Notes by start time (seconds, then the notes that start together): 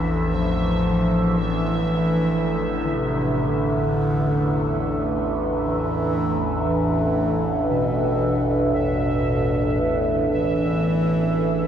Already playing: A1 E2 E3 D4 A4 B4 E5
0.35 F3
1.38 E3
2.85 D3
2.95 C3
3.48 D3
5.60 E3
6.66 E3
7.70 B2
8.75 B2
9.80 A2
10.30 E3